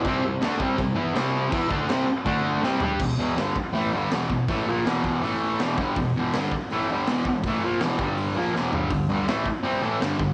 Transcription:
<<
  \new Staff \with { instrumentName = "Distorted electric guitar" } { \clef bass \time 4/4 \key e \minor \tempo 4 = 162 <c g c'>8 <c g>8 <d a d'>8 <c g c'>8 <c g>8 <e b e'>8 <c g c'>4 | <e b e'>8 <d a d'>8 <c g c'>8 r8 <d a d'>4 <c g c'>8 <g d' g'>8 | <e, b,>8 <e, b, e>8 <g, d g>8 r8 <a, e a>8 <g, d g>8 <e, b, e>8 <e, b,>8 | <a, e a>8 <ais, f ais>8 <e, b, e>4 <a, e a>4 <e, b, e>8 <g, d g>8 |
<e, b,>8 <e, b, e>8 <g, d g>8 r8 <a, e a>8 <g, d g>8 <e, b, e>8 <e, b,>8 | <a, e a>8 <ais, f ais>8 <e, b, e>8 <g, d g>4 <ais, f ais>8 <e, b, e>8 <g, d g>8 | <g, d>8 <g, d g>8 <a, e a>8 r8 <c g c'>8 <a, e a>8 <g, d g>8 <g, d>8 | }
  \new DrumStaff \with { instrumentName = "Drums" } \drummode { \time 4/4 <cymc bd>4 <cymc sn>8 bd8 <cymc bd>4 <cymc sn>4 | <cymc bd>8 bd8 <cymc sn>4 <cymc bd>4 sn8 tomfh8 | <cymc bd>4 <hho sn>8 bd8 hho4 <hho sn>8 bd8 | <hho bd>4 <hho sn>8 bd8 hho4 <hho sn>16 sn16 bd8 |
<hho bd>4 <hho sn>8 bd8 hho4 <hho sn>8 bd8 | <hho bd>4 <hho sn>8 bd8 hho4 sn8 tomfh8 | <hho bd>4 <hho sn>8 bd8 hho4 <hho sn>8 bd8 | }
>>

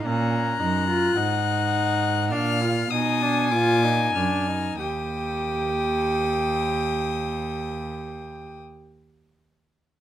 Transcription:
<<
  \new Staff \with { instrumentName = "Violin" } { \time 4/4 \key bes \phrygian \tempo 4 = 46 ges'''2 f'''8 ees'''8 d'''8 f'''8 | ees'''1 | }
  \new Staff \with { instrumentName = "Violin" } { \time 4/4 \key bes \phrygian bes''4 ges''4 f''8 aes''4. | g''1 | }
  \new Staff \with { instrumentName = "Viola" } { \time 4/4 \key bes \phrygian des'8 ees'16 f'16 ees'4 d'16 f'16 ees'16 d'16 f'16 ees'16 d'16 ees'16 | g'1 | }
  \new Staff \with { instrumentName = "Cello" } { \clef bass \time 4/4 \key bes \phrygian bes,8 ges,8 aes,4 bes,8 ces8 bes,8 ges,8 | ees,1 | }
>>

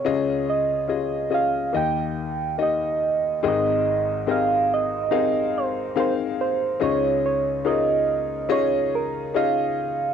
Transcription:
<<
  \new Staff \with { instrumentName = "Soft synth lead" } { \time 4/4 \key aes \major \tempo 4 = 71 des''8 ees''4 f''8 g''4 ees''4 | ees''4 f''8 ees''4 c''8 c''8 c''8 | des''8 des''8 ees''4 des''8 bes'8 f''4 | }
  \new Staff \with { instrumentName = "Grand piano" } { \time 4/4 \key aes \major <des' f' aes' ees''>4 <des' f' aes' ees''>8 <des' f' aes' ees''>8 <bes ees' g' ees''>4 <bes ees' g' ees''>4 | <c' ees' aes' bes' ees''>4 <c' ees' aes' bes' ees''>4 <c' ees' aes' bes' f''>4 <c' ees' aes' bes' f''>4 | <des' ees' f' aes' ees''>4 <des' ees' f' aes' bes'>4 <des' ees' f' aes' ees''>4 <des' ees' f' aes' ees''>4 | }
  \new Staff \with { instrumentName = "Grand piano" } { \clef bass \time 4/4 \key aes \major <des, des>2 <ees, ees>2 | <aes,, aes,>1 | <des, des>1 | }
>>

